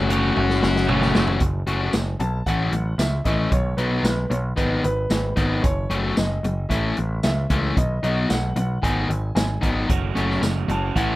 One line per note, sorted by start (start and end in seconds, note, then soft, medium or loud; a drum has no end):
0.00 0.31 F#1 medium
0.00 0.36 A3 loud
0.00 0.11 C#4 loud
0.00 0.84 F#4 medium
0.00 0.84 F#5 medium
0.10 0.44 C#3 medium
0.10 0.44 F#3 medium
0.10 0.44 A3 loud
0.10 0.44 C#4 loud
0.10 0.62 C#4 medium
0.10 0.60 F#4 medium
0.10 closed hi-hat medium
0.36 0.60 F#1 medium
0.36 high tom medium
0.49 snare medium
0.61 0.86 F#1 medium
0.61 0.88 C#4 medium
0.61 0.89 F#4 medium
0.61 snare medium
0.76 snare medium
0.88 1.12 F#1 medium
0.88 1.22 C#3 medium
0.88 1.23 F#3 medium
0.88 1.39 A3 medium
0.88 1.23 A3 loud
0.88 1.40 C#4 medium
0.88 1.23 C#4 loud
0.88 1.40 F#4 medium
0.88 mid tom loud
1.02 snare medium
1.15 1.39 F#1 loud
1.15 snare loud
1.27 floor tom loud
1.40 1.62 F#1 medium
1.40 muted distorted electric guitar stroke soft
1.40 kick loud
1.40 closed hi-hat medium
1.67 1.88 F#1 medium
1.67 1.92 A3 medium
1.67 1.93 C#4 medium
1.67 1.93 F#4 medium
1.67 closed hi-hat soft
1.93 2.15 F#1 medium
1.93 muted distorted electric guitar stroke soft
1.93 snare loud
1.93 closed hi-hat medium
1.93 tambourine loud
2.19 2.41 B1 medium
2.19 2.44 A5 medium
2.19 muted distorted electric guitar stroke soft
2.19 closed hi-hat soft
2.46 2.68 A1 medium
2.46 2.73 E3 medium
2.46 2.73 A3 medium
2.46 2.72 C#4 medium
2.46 3.01 F#5 medium
2.46 kick medium
2.46 closed hi-hat medium
2.72 2.93 A1 medium
2.72 muted distorted electric guitar stroke soft
2.72 closed hi-hat medium
2.98 3.20 C#2 medium
2.98 3.26 E5 medium
2.98 muted distorted electric guitar stroke soft
2.98 snare loud
2.98 closed hi-hat medium
2.98 tambourine loud
3.24 3.47 A1 medium
3.24 3.51 E3 medium
3.24 3.51 A3 medium
3.24 3.52 C#4 medium
3.24 3.52 D#5 medium
3.24 kick medium
3.24 snare soft
3.24 closed hi-hat medium
3.51 3.74 B1 medium
3.51 3.77 C#5 medium
3.51 muted distorted electric guitar stroke soft
3.51 kick loud
3.51 closed hi-hat medium
3.77 3.99 B1 medium
3.77 4.03 F#3 medium
3.77 4.04 B3 medium
3.77 4.05 D#4 medium
3.77 4.02 B4 medium
3.77 closed hi-hat medium
4.03 4.25 B1 medium
4.03 4.29 B4 medium
4.03 muted distorted electric guitar stroke soft
4.03 snare loud
4.03 closed hi-hat medium
4.03 tambourine loud
4.30 4.52 B1 medium
4.30 4.36 C#5 medium
4.30 muted distorted electric guitar stroke soft
4.30 closed hi-hat medium
4.56 4.79 G#1 medium
4.56 4.84 D#3 medium
4.56 4.83 B3 medium
4.56 4.82 D#4 medium
4.56 4.82 B4 medium
4.56 kick medium
4.56 closed hi-hat medium
4.83 5.06 G#1 medium
4.83 5.66 B4 loud
4.83 muted distorted electric guitar stroke soft
4.83 closed hi-hat medium
5.10 5.32 G#1 medium
5.10 muted distorted electric guitar stroke soft
5.10 snare loud
5.10 closed hi-hat medium
5.10 tambourine loud
5.36 5.59 G#1 medium
5.36 5.62 D#3 medium
5.36 5.63 B3 medium
5.36 5.63 D#4 medium
5.36 kick medium
5.36 snare soft
5.36 closed hi-hat medium
5.62 5.86 F#1 medium
5.62 6.18 C#5 medium
5.62 muted distorted electric guitar stroke soft
5.62 kick loud
5.62 closed hi-hat medium
5.90 6.12 F#1 medium
5.90 6.15 F#3 medium
5.90 6.16 A3 medium
5.90 6.16 C#4 medium
5.90 closed hi-hat medium
6.16 6.39 F#1 medium
6.16 6.66 D#5 medium
6.16 muted distorted electric guitar stroke soft
6.16 snare loud
6.16 closed hi-hat medium
6.16 tambourine medium
6.43 6.65 F#1 medium
6.43 muted distorted electric guitar stroke soft
6.43 closed hi-hat medium
6.69 6.92 A1 medium
6.69 6.97 E3 medium
6.69 6.97 A3 medium
6.69 6.96 C#4 medium
6.69 7.22 E5 medium
6.69 kick medium
6.69 closed hi-hat medium
6.97 7.19 A1 medium
6.97 muted distorted electric guitar stroke soft
6.97 closed hi-hat medium
7.23 7.45 C#2 medium
7.23 7.78 E5 medium
7.23 muted distorted electric guitar stroke soft
7.23 snare loud
7.23 closed hi-hat medium
7.23 tambourine loud
7.50 7.72 C#2 medium
7.50 7.76 E3 medium
7.50 7.77 A3 medium
7.50 7.77 C#4 medium
7.50 kick medium
7.50 closed hi-hat medium
7.77 7.98 B1 medium
7.77 8.02 D#5 medium
7.77 muted distorted electric guitar stroke soft
7.77 kick loud
7.77 closed hi-hat medium
8.03 8.25 B1 medium
8.03 8.28 F#3 medium
8.03 8.28 B3 medium
8.03 8.29 D#4 medium
8.03 8.31 D#5 medium
8.03 closed hi-hat medium
8.29 8.52 B1 medium
8.29 8.55 F#5 medium
8.29 muted distorted electric guitar stroke soft
8.29 snare loud
8.29 closed hi-hat medium
8.29 tambourine loud
8.56 8.78 B1 medium
8.56 8.84 F#5 medium
8.56 muted distorted electric guitar stroke soft
8.56 closed hi-hat medium
8.82 9.04 G#1 medium
8.82 9.09 D#3 medium
8.82 9.09 B3 medium
8.82 9.08 D#4 medium
8.82 9.34 G#5 medium
8.82 kick medium
8.82 closed hi-hat medium
9.09 9.31 G#1 medium
9.09 muted distorted electric guitar stroke soft
9.09 closed hi-hat medium
9.35 9.57 G#1 medium
9.35 9.73 G#5 medium
9.35 muted distorted electric guitar stroke soft
9.35 snare loud
9.35 closed hi-hat medium
9.35 tambourine loud
9.61 9.85 G#1 medium
9.61 9.89 D#3 medium
9.61 9.89 B3 medium
9.61 9.89 D#4 medium
9.61 kick medium
9.61 closed hi-hat medium
9.89 10.11 F#1 medium
9.89 10.68 F#3 medium
9.89 10.68 A3 medium
9.89 10.68 C#4 medium
9.89 10.68 F#4 medium
9.89 muted distorted electric guitar stroke soft
9.89 kick loud
9.89 closed hi-hat medium
10.15 10.38 F#1 medium
10.15 10.41 F#3 medium
10.15 10.41 A3 medium
10.15 10.42 C#4 medium
10.15 closed hi-hat medium
10.30 snare soft
10.41 10.63 F#1 medium
10.41 muted distorted electric guitar stroke soft
10.41 snare loud
10.41 closed hi-hat medium
10.41 tambourine loud
10.68 10.90 F#1 medium
10.68 10.95 F#3 medium
10.68 10.94 A3 medium
10.68 10.95 C#4 medium
10.68 10.94 F#4 medium
10.68 10.97 A5 medium
10.68 muted distorted electric guitar stroke soft
10.68 closed hi-hat medium
10.95 11.16 A1 medium
10.95 11.16 A2 medium
10.95 11.16 E3 medium
10.95 11.16 A3 medium
10.95 11.16 C#4 medium
10.95 11.16 E4 medium
10.95 11.16 F#5 medium
10.95 kick medium
10.95 closed hi-hat medium